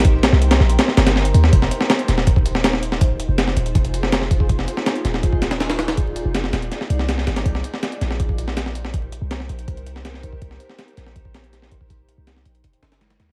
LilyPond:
<<
  \new Staff \with { instrumentName = "Ambient pad" } { \time 4/4 \key f \dorian \tempo 4 = 162 << { c''1 | c''1~ | c''1 | d''1~ |
d''1 | c''1~ | c''1~ | c''1~ |
c''1 | } \\ { <ees' g' bes'>1 | <ees' f' aes'>1~ | <ees' f' aes'>1~ | <ees' f' aes'>1~ |
<ees' f' aes'>1 | <ees' g' bes'>1~ | <ees' g' bes'>1~ | <ees' g' bes'>1~ |
<ees' g' bes'>1 | } >> }
  \new Staff \with { instrumentName = "808-style bass" } { \clef bass \time 4/4 \key f \dorian bes,,8. c,8. bes,,8 r8 g,,4 ees,8 | f,,8 r4 ees,,2~ ees,,8~ | ees,,8. f,,8. ees,,8 f,,2 | f,,8 r4 ees,,2~ ees,,8~ |
ees,,8. f,,8. ees,,8 r8 c,4 aes,,8 | c,8 r4 bes,,2~ bes,,8~ | bes,,8. c,8. bes,,8 c,2 | c,8 r4 bes,,2~ bes,,8~ |
bes,,8. c,8. bes,,8 r8 g,,4 ees,8 | }
  \new DrumStaff \with { instrumentName = "Drums" } \drummode { \time 4/4 <hh bd>8 <hh sn>16 sn16 hh16 <hh sn>16 sn16 hh16 <hh sn>16 sn16 <hh sn>16 <hh sn>16 sn16 hh16 hh16 sn16 | <hh bd>16 sn16 hh16 sn16 <hh sn>16 hh16 <hh sn>16 sn16 <hh bd>16 bd16 hh16 sn16 <hh sn>16 sn16 hh16 sn16 | <hh bd>8 hh8 <hh sn>16 sn16 hh16 hh16 <hh bd>16 hh16 hh16 sn16 <hh sn>16 sn16 <hh bd>16 bd16 | <hh bd>16 sn16 hh16 sn16 <hh sn>16 hh16 <hh sn>16 sn16 <hh bd>16 bd16 <hh sn>16 <hh sn>16 <hh sn>16 <hh sn>16 <hh sn>16 <hh sn>16 |
<hh bd>8 hh8 <hh sn>16 sn16 <hh sn>16 hh16 <hh sn>16 sn16 hh16 sn16 <hh sn>16 sn16 <hh sn>16 <hh sn>16 | <hh bd>16 sn16 hh16 sn16 <hh sn>16 hh16 <hh sn>16 sn16 <hh bd>16 bd16 hh16 sn16 <hh sn>16 sn16 hh16 sn16 | <hh bd>8 hh8 <hh sn>16 sn16 hh16 hh16 <hh bd>16 hh16 hh16 sn16 <hh sn>16 sn16 <hh bd>16 bd16 | <hh bd>16 sn16 hh16 sn16 <hh sn>16 hh16 <hh sn>16 sn16 <hh bd>16 bd16 <hh sn>16 hh16 <hh sn>16 sn16 <hh bd>16 bd16 |
<hh bd>8 hh8 <hh sn>16 sn16 hh16 hh16 <hh bd>16 hh16 <hh sn>16 <hh sn>16 <hh sn>16 <hh sn>16 <hh sn>8 | }
>>